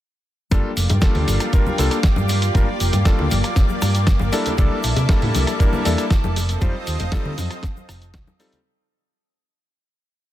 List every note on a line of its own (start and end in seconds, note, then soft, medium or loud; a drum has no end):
0.51 0.60 G1 loud
0.51 0.69 G3 medium
0.51 0.70 A#3 medium
0.51 6.32 A#3 medium
0.51 0.70 D4 medium
0.51 4.29 F4 medium
0.51 0.70 F4 medium
0.51 4.29 G4 medium
0.51 0.70 A4 loud
0.51 6.32 D5 medium
0.51 kick loud
0.51 closed hi-hat medium
0.51 high conga medium
0.51 shaker medium
0.77 0.86 F1 medium
0.77 open hi-hat loud
0.77 shaker loud
0.90 0.98 G2 loud
0.90 closed hi-hat medium
0.90 high bongo medium
0.90 high conga medium
0.90 low conga medium
0.90 shaker soft
1.01 1.50 G3 medium
1.01 1.50 A#3 medium
1.01 1.50 D4 medium
1.01 1.51 F4 medium
1.01 1.51 A4 medium
1.01 kick loud
1.01 snare loud
1.01 closed hi-hat medium
1.01 shaker medium
1.15 1.24 D2 medium
1.15 open hi-hat medium
1.15 low conga loud
1.28 1.36 G1 loud
1.28 open hi-hat loud
1.28 high conga medium
1.28 shaker medium
1.40 cross-stick medium
1.40 closed hi-hat medium
1.40 shaker soft
1.53 1.76 G3 medium
1.53 1.76 A#3 medium
1.53 1.76 D4 medium
1.53 1.76 F4 medium
1.53 1.76 A#4 loud
1.53 kick loud
1.53 closed hi-hat medium
1.53 shaker soft
1.67 high conga medium
1.67 low conga medium
1.67 shaker soft
1.78 1.87 C2 medium
1.78 1.97 G3 medium
1.78 1.97 A#3 medium
1.78 1.97 D4 medium
1.78 1.97 F4 medium
1.78 1.97 A4 loud
1.78 open hi-hat loud
1.78 shaker medium
1.91 cross-stick medium
1.91 closed hi-hat medium
1.91 shaker soft
2.03 kick loud
2.03 snare loud
2.03 closed hi-hat medium
2.03 shaker medium
2.16 2.49 G2 medium
2.16 high conga loud
2.16 shaker soft
2.29 open hi-hat loud
2.29 high bongo medium
2.29 shaker medium
2.42 closed hi-hat medium
2.42 shaker soft
2.54 2.64 G1 loud
2.54 2.66 G3 medium
2.54 2.66 A#3 medium
2.54 2.66 D4 medium
2.54 2.66 F4 medium
2.54 2.67 A#4 loud
2.54 kick loud
2.54 closed hi-hat medium
2.54 high conga medium
2.54 shaker medium
2.80 2.89 F1 medium
2.80 open hi-hat loud
2.80 shaker medium
2.93 3.02 G2 loud
2.93 closed hi-hat medium
2.93 high bongo medium
2.93 high conga medium
2.93 low conga medium
2.93 shaker soft
3.05 3.24 G3 medium
3.05 3.24 A#3 medium
3.05 3.24 D4 medium
3.05 3.24 F4 medium
3.05 3.24 A4 loud
3.05 kick loud
3.05 snare loud
3.05 closed hi-hat medium
3.05 shaker medium
3.19 3.27 D2 loud
3.19 low conga medium
3.31 3.40 G1 medium
3.31 open hi-hat loud
3.31 high conga medium
3.31 shaker medium
3.44 cross-stick medium
3.44 closed hi-hat medium
3.44 shaker soft
3.56 kick loud
3.56 snare medium
3.56 closed hi-hat medium
3.56 shaker medium
3.69 high conga medium
3.69 shaker soft
3.82 4.14 G2 medium
3.82 cross-stick medium
3.82 open hi-hat loud
3.82 shaker loud
3.95 closed hi-hat medium
3.95 shaker soft
4.07 kick loud
4.07 snare loud
4.07 closed hi-hat medium
4.07 shaker soft
4.19 4.29 G1 loud
4.19 high conga medium
4.19 shaker soft
4.32 4.51 G3 loud
4.32 4.51 A#3 medium
4.32 4.51 D4 medium
4.32 6.34 E4 medium
4.32 4.51 E4 medium
4.32 8.61 A4 medium
4.32 4.51 A4 loud
4.32 open hi-hat loud
4.32 high bongo medium
4.32 shaker medium
4.46 closed hi-hat medium
4.46 low conga medium
4.46 shaker soft
4.58 4.67 C2 loud
4.58 4.76 G3 medium
4.58 4.76 A#3 medium
4.58 4.76 D4 medium
4.58 4.77 E4 medium
4.58 4.77 A4 loud
4.58 kick loud
4.58 closed hi-hat medium
4.58 high conga medium
4.58 shaker soft
4.83 4.93 A#1 medium
4.83 open hi-hat loud
4.83 shaker medium
4.96 5.05 C3 loud
4.96 closed hi-hat medium
4.96 high bongo medium
4.96 high conga medium
4.96 low conga medium
4.96 shaker soft
5.09 5.57 G3 medium
5.09 5.57 A#3 medium
5.09 5.57 D4 medium
5.09 5.57 E4 medium
5.09 5.57 A4 loud
5.09 kick loud
5.09 snare loud
5.09 closed hi-hat medium
5.09 shaker medium
5.22 5.31 A2 loud
5.22 open hi-hat medium
5.22 low conga loud
5.35 5.43 C2 loud
5.35 open hi-hat loud
5.35 high conga loud
5.35 shaker medium
5.47 cross-stick medium
5.47 closed hi-hat medium
5.47 shaker soft
5.59 5.82 G3 medium
5.59 5.82 A#3 medium
5.59 5.82 D4 medium
5.59 5.83 E4 medium
5.59 5.83 A#4 loud
5.59 kick loud
5.59 closed hi-hat medium
5.59 shaker medium
5.72 high conga medium
5.72 low conga medium
5.72 shaker soft
5.85 5.94 E2 medium
5.85 6.03 G3 medium
5.85 6.03 A#3 medium
5.85 6.04 D4 medium
5.85 6.04 E4 medium
5.85 6.04 A4 loud
5.85 open hi-hat loud
5.85 shaker medium
5.98 cross-stick medium
5.98 closed hi-hat medium
5.98 shaker soft
6.10 kick loud
6.10 snare loud
6.10 closed hi-hat medium
6.10 shaker medium
6.24 6.55 F1 loud
6.24 high conga loud
6.24 shaker soft
6.36 8.63 C4 medium
6.36 8.63 F4 medium
6.36 8.63 D#5 medium
6.36 open hi-hat loud
6.36 high bongo medium
6.36 shaker medium
6.49 closed hi-hat medium
6.49 shaker soft
6.61 6.70 F2 loud
6.61 6.73 G3 loud
6.61 6.73 C4 medium
6.61 6.73 D#4 medium
6.61 6.73 F4 medium
6.61 6.73 C5 loud
6.61 kick loud
6.61 closed hi-hat medium
6.61 high conga medium
6.61 shaker medium
6.87 6.96 D#2 medium
6.87 open hi-hat loud
6.87 shaker medium
6.99 7.09 F1 loud
6.99 closed hi-hat medium
6.99 high bongo medium
6.99 high conga medium
6.99 low conga medium
6.99 shaker soft
7.12 7.30 G3 medium
7.12 7.31 C4 medium
7.12 7.31 D#4 medium
7.12 7.31 F4 medium
7.12 7.31 A4 loud
7.12 kick loud
7.12 snare loud
7.12 closed hi-hat soft
7.12 shaker medium
7.25 7.34 D3 loud
7.25 low conga medium
7.38 7.47 F2 loud
7.38 open hi-hat loud
7.38 high conga medium
7.38 shaker medium
7.51 cross-stick medium
7.51 closed hi-hat medium
7.51 shaker soft
7.63 kick loud
7.63 snare medium
7.63 closed hi-hat medium
7.63 shaker medium
7.77 high conga medium
7.77 shaker soft
7.89 8.14 F1 medium
7.89 cross-stick medium
7.89 open hi-hat loud
7.89 shaker loud
8.02 closed hi-hat medium
8.02 shaker soft
8.14 8.23 C2 loud
8.14 kick loud
8.14 snare loud
8.14 closed hi-hat soft
8.14 shaker medium
8.27 high conga loud
8.27 shaker soft
8.39 8.58 G3 loud
8.39 8.58 C4 medium
8.39 8.58 D#4 medium
8.39 8.58 F4 medium
8.39 8.58 A4 loud
8.39 open hi-hat loud
8.39 high bongo medium
8.39 shaker medium
8.52 closed hi-hat medium
8.52 low conga medium
8.52 shaker soft